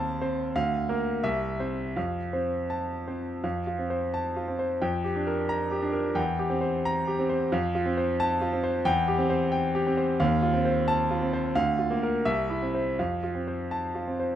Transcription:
Already playing: D#2 C4 C5 F5 A5
0.21 C4 C5
0.56 D2 F5
0.89 A#3 A#4
1.24 C2 E5
1.60 C4 C5
1.96 F2 F5
2.33 C4 C5
2.70 A5
3.08 C4 C5
3.44 F2 F5
3.67 F4
3.79 C4
3.90 C5
4.14 A5
4.37 F4
4.48 C4
4.59 C5
4.82 F2 G5
5.04 G4
5.16 D4
5.27 A#4
5.49 A#5
5.71 G4
5.82 D4
5.93 A#4
6.15 E2 G5
6.39 G4
6.50 C4
6.61 C5
6.85 A#5
7.07 G4
7.19 C4
7.29 C5
7.52 F2 F5
7.75 F4
7.86 C4
7.97 C5
8.20 A5
8.41 F4
8.53 C4
8.63 C5
8.85 E2 G5
9.08 G4
9.18 C4
9.30 C5
9.52 G5
9.75 G4
9.87 C4
9.97 C5
10.20 D#2 F5
10.43 F4
10.54 C4
10.65 C5
10.88 A5
11.11 F4
11.22 C4
11.33 C5
11.55 D2 F5
11.79 F4
11.90 A#3
12.03 A#4
12.25 C2 E5
12.50 E4
12.62 C4
12.74 C5
12.99 F2 F5
13.23 F4
13.35 C4
13.48 C5
13.71 A5
13.95 F4
14.08 C4
14.20 C5

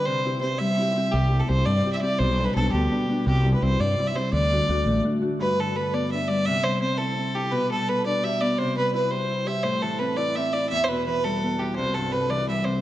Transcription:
Already playing: D3 A3 D4 E4 G4 B4
0.05 C3 C5
0.25 C4 E4 G4
0.41 C4 E4 G4 C5
0.59 G3 E5
0.76 C4 E4
0.82 G4
0.96 C4 E4 G4
1.11 C2 G3 G4
1.32 C4 E4 G4
1.39 A4
1.49 C2 C4 E4 G4 C5
1.65 G2 G3 D5
1.85 C4 E4 G4
1.92 E5
2.01 C4 E4 G4 D5
2.19 B1 B2 C5
2.37 G3 B3 D4
2.45 B4
2.55 B1 G3 B3 D4 A4
2.72 D2 B2 G4
2.91 G3 B3 D4
3.08 G3 B3 D4
3.26 C2 C3 G4
3.44 G3 C4 E4
3.54 B4
3.62 C2 G3 C4 E4 C5
3.80 G2 G3 D5
3.98 G3 C4 E4
4.07 E5
4.15 G3 C4 E4 C5
4.33 D2 D3 D5
4.52 A3 D4 F#4
4.69 D2 A3 D4 F#4
4.86 A1 A3
5.04 A3 D4 F#4
5.21 A3 D4 F#4
5.39 G2 B4
5.58 D3 A4
5.75 G3 B4
5.93 B3 D5
6.11 D4 E5
6.28 G3 D5
6.45 C3 E5
6.63 G3 C5
6.81 C4 C5
6.97 E4 A4
7.18 C4
7.35 E4 G4
7.51 B2 B4
7.71 G3 A4
7.88 B3 B4
8.05 D4 D5
8.24 G4 E5
8.41 B3 D5
8.58 C3 C5
8.77 G3 B4
8.94 E4 B4
9.11 G4 C5
9.30 E4
9.47 G4 E5
9.63 A2 C5
9.82 E3 A4
9.99 C4 B4
10.17 E4 D5
10.36 C4 E5
10.53 E4 D5
10.69 E2 E5
10.84 C5
10.88 B2 B4
11.06 E3 B4
11.24 G3 A4
11.43 B3
11.59 E3 G4
11.76 C2 C5
11.94 G2 A4
12.12 C3 B4
12.30 E3 D5
12.48 G3 E5
12.64 C3 C5

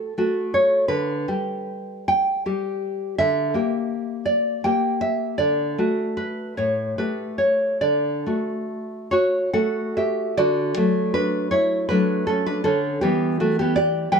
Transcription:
Already playing: A3 F#4
0.18 A3 F#4
0.54 C#5
0.88 D3 B4
1.28 G3 G4
2.08 G5
2.46 G3 G4
3.18 D3 E5
3.54 A#3 G4
4.26 D5
4.64 A#3 G4 G5
5.01 E5
5.38 D3 D5
5.78 A3 F#4
6.17 B4
6.57 A2 C#5
6.98 A3 G4 B4
7.38 C#5
7.81 D3 D5
8.26 A3 F#4
9.11 F#4 C#5
9.53 A3 F#4 A4 F#5
9.97 G4 E5
10.37 D3 F#4 D5
10.77 F#3 A3
11.14 D4 B4
11.51 E4 C#5
11.89 F#3 A3 D4 B4
12.27 C#4 A4
12.46 D4 B4
12.64 D3 C#4 A4
13.01 E3 G3 B3 G4
13.40 A3 F#4
13.59 B3 G4
13.76 G4 D5
14.12 E3 G3 B4 G5

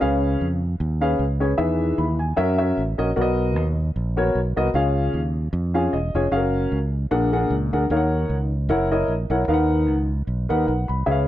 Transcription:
0.01 C#2 C#3 C#4 G#4 B4 F5
0.41 F2
0.80 D#2
1.01 C#4 G#4 B4 F5
1.19 C#2
1.40 C#4 G#4 B4 C#5
1.57 E2 D#3 E3 G#4 B4 E5
1.98 D#2 B5
2.19 G#5
2.36 F#2 C#4 F#4 A#4 E5
2.58 C#4 F#4 A#4 E5
2.77 A1
2.98 A#1 C#4 F#4 A#4 D#5
3.16 B1 B2 B3 F#4 A#4 D5
3.21 D#5
3.56 D#2
3.96 A#1
4.17 B3 F#4 A#4 C#5
4.35 B1
4.56 C2 B3 F#4 A#4 D#5
4.74 C#2 C#3 C#4 F4 G#4 F5
5.14 D#2
5.53 F2
5.74 C#4 F4 G#4 F5 G#5
5.93 E1 D#5
6.15 F1 C#4 F4 G#4 C#5
6.31 F#1 C#4 F#4 G#4 F5
6.37 A#4
6.72 C#2
7.11 A#1 A#2 D4 G#4 A#4 F#5
7.33 D4 G#4 A#4 F#5
7.50 C#2
7.73 D2 D4 G#4 A#4 F#5
7.90 D#2 D#3 D#4 A#4 C#5 F5
7.97 F#5
8.29 C#2
8.69 F#1 E4 A#4 C#5 F#5
8.91 E4 A#4 C#5 D#5
9.08 A#1
9.30 B1 E4 A#4 C#5 F#5
9.48 D#2 D#3 D#4 A#4 B4 F5
9.53 F#5
9.88 C#2
10.27 B1
10.49 D#2 D#4 A#4 B4 F#5
10.67 B1 F#5
10.88 C2 B5
11.06 C#2 C#3 C#4 G#4 B4 E5
11.11 F5

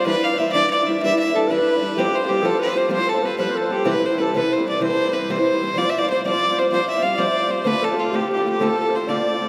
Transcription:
0.05 E3 G3 D4 E4 B4
0.15 D4 E4 B4
0.24 F5
0.31 D4 E4 B4
0.38 G3 D4 E4 E5
0.42 B4
0.52 E3 G3 D4 E4 B4 D5
0.64 D4 E4 B4
0.70 D5
0.80 D4 E4 B4
0.86 G3 D4 E4 E5
0.91 B4
1.00 E3 G3 D4 E4 E5
1.05 B4
1.12 D4 E4 B4
1.18 E5
1.26 D4 E4 B4
1.34 G3 D4 E4 A4 B4
1.48 E3 G3 D4 E4 B4
1.52 B4
1.58 D4 E4 B4
1.73 D4 E4 B4
1.82 G3 D4 E4 B4
1.95 F3 G3 G4
1.99 C4 F4 C5
2.04 C4 F4 C5
2.13 C5
2.21 C4 F4 C5
2.26 G3 G4
2.31 C4 F4 C5
2.42 F3 G3 C4 F4 A4 C5
2.51 C4 F4 C5
2.59 B4
2.67 C4 F4 C5
2.73 G3 C4 F4 C5
2.89 F3 G3 C4 F4 C5
2.98 C4 F4 C5
3.07 A4
3.14 C4 F4 C5
3.22 G3 C4 F4 B4 C5
3.38 F3 G3 C4 F4 B4 C5
3.47 C4 F4 C5
3.55 A4
3.62 C4 F4 C5
3.69 G3 C4 F4 G4 C5
3.85 C3 E3 G3 C4 E4 B4
3.95 G3 C4 E4 B4
4.03 C5
4.10 G3 C4 E4 B4
4.17 G3 C4 E4 A4 B4
4.34 C3 E3 G3 C4 E4 B4
4.42 G3 C4 E4 B4
4.52 C5
4.56 G3 C4 E4 B4
4.65 G3 C4 E4 B4 D5
4.79 C3 E3 G3 C4 E4 B4 C5
4.89 G3 C4 E4 B4
5.05 G3 C4 E4 B4
5.12 G3 C4 E4 B4
5.29 C3 E3 G3 C4 E4 B4 C5
5.37 G3 C4 E4 B4
5.54 G3 C4 E4 B4
5.62 G3 C4 E4 B4
5.75 F3 G3 C4 F4 C5 D5
5.84 C4 F4 C5
5.89 E5
5.97 D5
6.01 C4 F4 C5
6.07 G3 C5
6.11 C4 F4 C5
6.23 F3 G3 C4 F4 D5
6.27 C5
6.32 C4 F4 C5
6.49 C4 F4 C5
6.56 G3 C4 F4 C5
6.71 F3 G3 C4 F4 C5
6.81 C4 F4 C5
6.87 E5
6.95 C4 F4 C5
7.02 G3 C4 F4 C5 F5
7.16 F3 G3 C4 F4 C5 D5
7.24 C4 F4 C5 E5
7.38 C5 D5
7.42 C4 F4
7.48 G3 C4 F4 C5
7.63 D3 A3 C4 F4 A4 B4
7.72 C4 F4 A4
7.82 A4
7.89 C4 F4 A4
7.95 A3 C4 F4
7.99 F4 A4
8.12 D3 A3 C4 F4 G4 A4
8.21 C4 F4 A4
8.28 G4
8.32 G4
8.37 C4 F4 A4
8.44 A3 C4 F4 A4
8.49 G4
8.59 D3 A3 C4 F4 A4
8.69 C4 F4 A4
8.86 C4 F4 A4
8.90 A3 C5
8.95 C4 F4 A4 C5
9.07 D3 A3 C4 F4 A4 D5
9.18 C4 F4 A4
9.33 C4 F4 A4
9.41 A3 C4 F4 A4

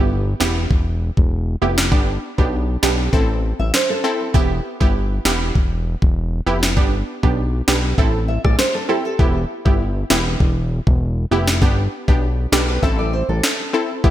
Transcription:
Already playing: G1 B3 E4 G4
0.40 E1 B3 E4 G4, snare
0.71 E1, kick
1.17 E1, kick
1.62 F1 B3 E4 G4
1.78 snare
1.92 G1 B3 D4 G4, kick
2.38 B1 B3 D4 G4, kick
2.83 B1 B3 D4 G4, snare
3.13 A1 C4 E4 A4, kick
3.59 A1 E5
3.74 C5, snare
3.90 A4
4.04 C4 E4 A4
4.34 E1 B3 E4 G4, kick
4.80 G1 B3 E4 G4, kick
5.25 E1 B3 E4 G4, snare
5.55 E1, kick
6.02 E1, kick
6.46 F1 B3 E4 G4
6.63 snare
6.77 G1 B3 D4 G4, kick
7.23 B1 B3 D4 G4, kick
7.68 B1 B3 D4 G4, snare
7.98 A1 C4 E4 A4, kick
8.28 E5
8.44 A1 D5, kick, cross-stick
8.58 C5, snare
8.74 A4
8.89 C4 E4 G4 A4
9.05 A4
9.19 E1 B3 E4 G4, kick
9.65 G1 B3 E4 G4, kick
10.10 E1 B3 E4 G4, snare
10.40 E1, kick
10.87 E1, kick
11.31 F1 B3 E4 G4
11.48 snare
11.62 G1 B3 D4 G4, kick
12.08 B1 B3 D4 G4, kick
12.52 B1 B3 D4 G4 A4, snare
12.68 B4
12.83 A1 C4 E4 A4 E5, kick
12.99 D5
13.13 C5
13.29 A1 A4
13.44 snare
13.73 C4 E4 A4
14.04 E1 B3 E4 G4, kick

